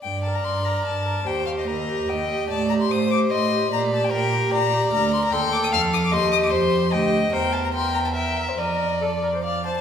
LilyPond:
<<
  \new Staff \with { instrumentName = "Violin" } { \time 3/4 \key g \minor \tempo 4 = 147 g''8 a''16 bes''16 c'''8 bes''8 a''4 | g''8 f''16 ees''16 ees''4 g''4 | a''8 bes''16 c'''16 ees'''8 d'''8 c'''4 | bes''8 a''16 g''16 g''4 bes''4 |
\key bes \major bes''8 c'''16 bes''16 c'''8 d'''16 ees'''16 f'''8 ees'''16 d'''16 | c'''8 ees'''16 d'''16 c'''4 g''4 | g''8 a''16 bes''16 c'''8 bes''16 a''16 g''8 e''16 c''16 | ees''4 d''4 f''8 a''16 a''16 | }
  \new Staff \with { instrumentName = "Violin" } { \time 3/4 \key g \minor d''2. | c''4 bes'4 ees''4 | d''4 c''4 ees''4 | d''4 bes'4 d''4~ |
\key bes \major d''4 g''4 f''4 | ees''4 c''4 ees''4 | c''4 g''4 e''4 | d''2~ d''8 r8 | }
  \new Staff \with { instrumentName = "Viola" } { \time 3/4 \key g \minor r8 bes'4 bes'4 bes'8 | g'8 g'4 g'4 g'8 | r8 g'4 g'4 g'8 | g'8 g'4 g'4 g'8 |
\key bes \major bes'4 a'2 | g'2 g'4 | bes'4 bes'4 bes'4 | bes'4 a'8 bes'16 c''16 d''8 c''8 | }
  \new Staff \with { instrumentName = "Cello" } { \clef bass \time 3/4 \key g \minor g,4 g,4 g,4 | ees,4 ees,4 ees,4 | a,4 a,4 a,4 | bes,4 bes,4 bes,4 |
\key bes \major d,4 ees,4 f,4 | ees,4 f,4 d,4 | e,2. | f,2~ f,8 r8 | }
>>